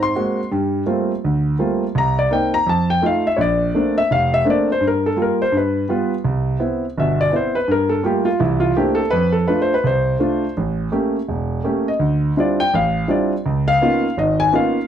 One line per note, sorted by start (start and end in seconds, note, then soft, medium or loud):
0.00 0.11 G#2 medium
0.00 0.11 C4 medium
0.00 0.48 C6 loud
0.15 0.39 G#3 medium
0.15 0.39 A#3 soft
0.15 0.40 C4 soft
0.15 0.40 F#4 medium
0.51 0.82 G2 medium
0.51 0.82 G3 medium
0.86 1.11 G3 soft
0.86 1.10 A3 soft
0.86 1.11 A#3 soft
0.86 1.11 C4 soft
0.86 1.11 F4 medium
1.24 1.55 D2 medium
1.59 1.83 G3 medium
1.59 1.83 A3 soft
1.59 1.83 A#3 soft
1.59 1.83 C4 soft
1.59 1.83 F4 medium
1.95 2.26 C2 medium
1.95 2.18 A#5 medium
2.19 2.31 D5 medium
2.31 2.54 A#3 medium
2.31 2.55 C4 soft
2.31 2.55 D#4 medium
2.31 2.53 G5 medium
2.54 2.66 A#5 loud
2.66 2.97 F2 medium
2.66 2.90 A5 medium
2.90 3.02 G5 medium
3.02 3.26 A3 medium
3.02 3.26 D#4 medium
3.02 3.26 F4 medium
3.02 3.26 F5 medium
3.27 3.39 E5 medium
3.36 3.69 A#1 medium
3.36 3.39 C#5 medium
3.41 3.94 D5 medium
3.75 3.98 A3 medium
3.75 3.98 A#3 soft
3.75 3.98 C4 medium
3.75 3.99 D4 medium
3.98 4.10 E5 loud
4.11 4.41 F1 medium
4.11 4.32 F5 medium
4.34 4.46 E5 loud
4.45 4.69 A3 medium
4.45 4.69 A#3 medium
4.45 4.69 C4 medium
4.45 4.69 D4 medium
4.50 4.69 D5 medium
4.72 4.83 C5 medium
4.81 5.12 G2 medium
4.87 5.06 A#4 medium
5.06 5.18 A4 medium
5.16 5.40 G3 medium
5.16 5.41 A#3 medium
5.16 5.41 F4 medium
5.22 5.41 A#4 medium
5.42 5.54 C5 medium
5.52 5.83 G2 medium
5.57 6.09 B4 medium
5.89 6.12 G3 medium
5.89 6.13 B3 medium
5.89 6.13 F4 medium
6.25 6.55 C2 medium
6.59 6.84 B3 medium
6.59 6.84 C4 soft
6.59 6.84 E4 medium
6.98 7.28 G1 medium
6.98 7.28 B2 medium
6.98 7.20 E5 medium
7.21 7.33 D5 medium
7.32 7.56 B3 medium
7.32 7.56 C4 soft
7.32 7.56 E4 medium
7.36 7.56 C5 medium
7.55 7.68 B4 medium
7.68 7.99 G2 medium
7.68 7.92 A#4 medium
7.89 8.03 A4 medium
8.03 8.27 G3 medium
8.03 8.28 A3 soft
8.03 8.27 A#3 soft
8.03 8.24 F4 medium
8.03 8.27 G4 medium
8.25 8.39 F4 medium
8.39 8.71 C2 medium
8.39 8.71 E3 medium
8.39 8.61 E4 medium
8.60 8.74 F4 medium
8.77 9.00 A3 medium
8.77 9.00 A#3 soft
8.77 9.01 C4 medium
8.77 9.00 D4 medium
8.77 9.00 E4 medium
8.77 8.98 G4 medium
8.95 9.10 A4 medium
9.10 9.43 F2 medium
9.10 9.33 B4 loud
9.32 9.46 A4 medium
9.48 9.72 A3 soft
9.48 9.72 D4 soft
9.48 9.72 F4 medium
9.48 9.59 B4 medium
9.62 9.72 C5 medium
9.74 9.84 B4 medium
9.84 10.15 C2 medium
9.84 10.53 C5 medium
10.19 10.43 A3 medium
10.19 10.44 D4 soft
10.19 10.44 F4 medium
10.57 10.87 A1 medium
10.92 11.16 A3 medium
10.92 11.16 A#3 medium
10.92 11.16 C#4 soft
10.92 11.16 G4 medium
11.28 11.59 E1 medium
11.64 11.88 A3 medium
11.64 11.88 A#3 soft
11.64 11.88 C#4 medium
11.64 11.88 G4 medium
11.88 12.33 D#5 medium
11.99 12.31 D2 medium
12.37 12.60 G3 medium
12.37 12.60 C4 soft
12.37 12.60 D4 medium
12.37 12.60 E4 soft
12.37 12.61 F4 medium
12.37 12.60 D5 medium
12.60 12.72 G5 loud
12.74 13.04 A1 medium
12.74 13.07 F5 medium
13.08 13.32 G3 medium
13.08 13.32 C4 soft
13.08 13.32 D4 medium
13.08 13.32 E4 medium
13.08 13.32 F4 medium
13.08 13.31 D5 medium
13.46 13.76 C#2 medium
13.68 14.13 F5 loud
13.82 14.05 A#3 medium
13.82 14.05 B3 soft
13.82 14.05 C#4 soft
13.82 14.05 D#4 soft
13.82 14.05 F4 medium
14.17 14.48 G#1 medium
14.17 14.48 G#2 medium
14.17 14.39 D#5 medium
14.40 14.52 G#5 loud
14.53 14.76 A#3 medium
14.53 14.76 B3 medium
14.53 14.76 C#4 medium
14.53 14.76 D#4 soft
14.53 14.77 F4 medium
14.53 14.87 F5 medium